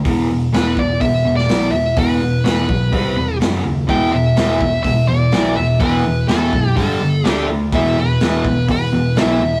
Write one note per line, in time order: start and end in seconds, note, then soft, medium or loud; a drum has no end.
0.04 0.48 E1 loud
0.04 0.27 E2 medium
0.04 0.28 B2 medium
0.04 0.28 E3 loud
0.04 kick loud
0.04 open hi-hat medium
0.30 0.51 E2 medium
0.30 0.51 B2 medium
0.53 0.75 E1 medium
0.53 0.75 E2 medium
0.53 0.75 B2 loud
0.53 0.76 E3 loud
0.53 0.79 B4 medium
0.53 snare loud
0.53 open hi-hat medium
0.76 0.98 E1 medium
0.76 0.98 E2 medium
0.76 0.99 B2 medium
0.76 1.01 D5 medium
0.76 kick medium
1.00 1.22 E1 medium
1.00 1.22 E2 medium
1.00 1.23 B2 medium
1.00 1.36 E5 medium
1.00 kick medium
1.00 open hi-hat medium
1.25 1.47 E1 loud
1.25 1.47 E2 medium
1.25 1.47 B2 medium
1.36 1.70 D5 loud
1.36 snare soft
1.48 1.70 B1 medium
1.48 1.72 E2 medium
1.48 1.72 B2 medium
1.48 1.72 E3 loud
1.48 snare loud
1.48 open hi-hat medium
1.71 1.93 E1 medium
1.71 1.95 E2 medium
1.71 1.95 B2 medium
1.71 1.97 E5 medium
1.97 2.40 E1 medium
1.97 2.20 E2 medium
1.97 2.20 B2 loud
1.97 2.20 E3 medium
1.97 2.44 B4 medium
1.97 kick loud
1.97 open hi-hat medium
2.21 2.43 E2 medium
2.21 2.43 B2 medium
2.44 2.66 E1 medium
2.44 2.67 E2 medium
2.44 2.68 B2 medium
2.44 2.68 E3 medium
2.44 3.37 B4 medium
2.44 snare loud
2.44 open hi-hat medium
2.68 2.91 B1 medium
2.68 2.90 E2 medium
2.68 2.91 B2 medium
2.68 kick medium
2.92 3.14 C2 medium
2.92 3.15 C3 medium
2.92 3.15 G3 medium
2.92 3.16 C4 medium
2.92 kick medium
2.92 open hi-hat medium
3.16 3.38 E1 medium
3.16 3.39 C3 medium
3.16 3.39 G3 medium
3.40 3.62 F#1 medium
3.40 3.63 F#2 medium
3.40 3.63 C#3 medium
3.40 3.64 F#3 loud
3.40 snare loud
3.40 open hi-hat medium
3.64 3.87 D#2 medium
3.64 3.86 F#2 medium
3.64 3.86 C#3 medium
3.87 4.32 E1 medium
3.87 4.10 E2 medium
3.87 4.10 B2 loud
3.87 4.11 E3 loud
3.87 4.14 G5 loud
3.87 kick medium
3.87 open hi-hat soft
4.11 4.34 E2 medium
4.11 4.34 B2 medium
4.11 4.82 E5 loud
4.36 4.58 E1 medium
4.36 4.59 E2 medium
4.36 4.60 B2 medium
4.36 4.60 E3 loud
4.36 snare loud
4.36 open hi-hat medium
4.60 4.82 E1 medium
4.60 4.82 E2 medium
4.60 4.83 B2 medium
4.60 kick medium
4.83 5.06 E1 medium
4.83 5.06 E2 medium
4.83 5.06 B2 medium
4.83 5.08 E5 medium
4.83 kick medium
4.83 open hi-hat medium
5.08 5.30 E1 medium
5.08 5.30 E2 medium
5.08 5.31 B2 medium
5.08 5.56 D5 loud
5.32 5.55 B1 medium
5.32 5.55 E2 medium
5.32 5.56 B2 loud
5.32 5.56 E3 loud
5.32 snare loud
5.32 open hi-hat medium
5.57 5.79 E1 medium
5.57 5.79 E2 medium
5.57 5.79 B2 medium
5.57 5.79 E5 medium
5.80 6.23 E1 loud
5.80 6.03 E2 loud
5.80 6.03 B2 medium
5.80 6.04 E3 loud
5.80 6.28 B4 medium
5.80 kick loud
5.80 open hi-hat medium
6.05 6.27 E2 medium
6.05 6.27 B2 medium
6.28 6.51 E1 medium
6.28 6.52 E2 medium
6.28 6.52 B2 medium
6.28 6.52 E3 medium
6.28 6.75 A4 medium
6.28 snare loud
6.28 open hi-hat medium
6.52 6.74 F#1 medium
6.52 6.75 E2 medium
6.52 6.75 B2 medium
6.52 kick medium
6.76 6.98 G1 medium
6.76 7.00 G2 medium
6.76 7.00 D3 medium
6.76 7.00 G3 medium
6.76 7.27 A4 medium
6.76 kick medium
6.76 open hi-hat medium
7.00 7.22 G1 medium
7.00 7.23 G2 medium
7.00 7.23 D3 medium
7.24 7.46 D2 medium
7.24 7.47 D3 medium
7.24 7.48 A3 loud
7.24 7.48 D4 loud
7.24 7.45 G4 medium
7.24 snare loud
7.24 open hi-hat medium
7.49 7.70 D2 medium
7.49 7.71 D3 medium
7.49 7.71 A3 medium
7.72 8.16 E1 loud
7.72 7.96 E2 medium
7.72 7.96 B2 loud
7.72 7.96 E3 loud
7.72 7.99 E5 loud
7.72 kick loud
7.72 open hi-hat medium
7.97 8.19 E2 medium
7.97 8.19 B2 medium
7.97 8.66 B4 loud
8.20 8.42 E1 medium
8.20 8.44 E2 medium
8.20 8.44 B2 loud
8.20 8.44 E3 loud
8.20 snare loud
8.20 open hi-hat medium
8.45 8.66 E1 medium
8.45 8.67 E2 medium
8.45 8.67 B2 medium
8.45 kick medium
8.68 8.90 E1 medium
8.68 8.90 E2 medium
8.68 8.91 B2 medium
8.68 9.20 B4 medium
8.68 kick medium
8.68 open hi-hat medium
8.92 9.14 E1 medium
8.92 9.14 E2 medium
8.92 9.14 B2 medium
9.16 9.38 B1 medium
9.16 9.39 E2 medium
9.16 9.39 B2 loud
9.16 9.40 E3 loud
9.16 9.60 E5 medium
9.16 snare loud
9.16 open hi-hat medium
9.40 9.60 E1 medium
9.40 9.60 E2 medium
9.40 9.60 B2 medium